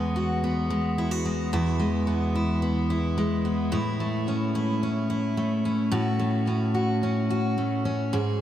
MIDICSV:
0, 0, Header, 1, 2, 480
1, 0, Start_track
1, 0, Key_signature, 4, "major"
1, 0, Tempo, 549451
1, 1339, Time_signature, 4, 2, 24, 8
1, 7348, End_track
2, 0, Start_track
2, 0, Title_t, "Steel-string acoustic guitar"
2, 0, Program_c, 0, 25
2, 0, Note_on_c, 0, 40, 80
2, 0, Note_on_c, 0, 56, 61
2, 0, Note_on_c, 0, 59, 72
2, 138, Note_on_c, 0, 66, 64
2, 377, Note_off_c, 0, 59, 0
2, 381, Note_on_c, 0, 59, 60
2, 611, Note_off_c, 0, 56, 0
2, 615, Note_on_c, 0, 56, 65
2, 854, Note_off_c, 0, 66, 0
2, 857, Note_on_c, 0, 64, 69
2, 971, Note_off_c, 0, 64, 0
2, 971, Note_on_c, 0, 66, 58
2, 1091, Note_off_c, 0, 56, 0
2, 1095, Note_on_c, 0, 56, 60
2, 1325, Note_off_c, 0, 40, 0
2, 1335, Note_on_c, 0, 40, 88
2, 1336, Note_off_c, 0, 66, 0
2, 1339, Note_on_c, 0, 64, 72
2, 1565, Note_off_c, 0, 56, 0
2, 1569, Note_on_c, 0, 56, 61
2, 1805, Note_off_c, 0, 59, 0
2, 1809, Note_on_c, 0, 59, 62
2, 2053, Note_off_c, 0, 64, 0
2, 2056, Note_on_c, 0, 64, 67
2, 2279, Note_off_c, 0, 59, 0
2, 2290, Note_on_c, 0, 59, 62
2, 2531, Note_off_c, 0, 64, 0
2, 2534, Note_on_c, 0, 64, 64
2, 2764, Note_off_c, 0, 56, 0
2, 2775, Note_on_c, 0, 56, 62
2, 3002, Note_off_c, 0, 59, 0
2, 3013, Note_on_c, 0, 59, 59
2, 3248, Note_on_c, 0, 45, 88
2, 3250, Note_off_c, 0, 64, 0
2, 3253, Note_on_c, 0, 64, 75
2, 3256, Note_off_c, 0, 40, 0
2, 3303, Note_off_c, 0, 59, 0
2, 3304, Note_off_c, 0, 56, 0
2, 3496, Note_on_c, 0, 57, 61
2, 3738, Note_on_c, 0, 61, 58
2, 3972, Note_off_c, 0, 64, 0
2, 3976, Note_on_c, 0, 64, 70
2, 4216, Note_off_c, 0, 61, 0
2, 4220, Note_on_c, 0, 61, 62
2, 4450, Note_off_c, 0, 64, 0
2, 4454, Note_on_c, 0, 64, 69
2, 4690, Note_off_c, 0, 57, 0
2, 4694, Note_on_c, 0, 57, 65
2, 4935, Note_off_c, 0, 61, 0
2, 4938, Note_on_c, 0, 61, 59
2, 5157, Note_off_c, 0, 45, 0
2, 5168, Note_on_c, 0, 45, 90
2, 5169, Note_off_c, 0, 64, 0
2, 5172, Note_on_c, 0, 66, 70
2, 5408, Note_off_c, 0, 57, 0
2, 5411, Note_on_c, 0, 57, 59
2, 5652, Note_off_c, 0, 61, 0
2, 5655, Note_on_c, 0, 61, 65
2, 5882, Note_off_c, 0, 66, 0
2, 5892, Note_on_c, 0, 66, 63
2, 6131, Note_off_c, 0, 61, 0
2, 6141, Note_on_c, 0, 61, 61
2, 6371, Note_off_c, 0, 66, 0
2, 6381, Note_on_c, 0, 66, 73
2, 6609, Note_off_c, 0, 57, 0
2, 6619, Note_on_c, 0, 57, 56
2, 6849, Note_off_c, 0, 61, 0
2, 6860, Note_on_c, 0, 61, 62
2, 7094, Note_off_c, 0, 45, 0
2, 7101, Note_off_c, 0, 66, 0
2, 7102, Note_on_c, 0, 44, 84
2, 7106, Note_on_c, 0, 68, 69
2, 7148, Note_off_c, 0, 57, 0
2, 7148, Note_off_c, 0, 61, 0
2, 7348, Note_off_c, 0, 44, 0
2, 7348, Note_off_c, 0, 68, 0
2, 7348, End_track
0, 0, End_of_file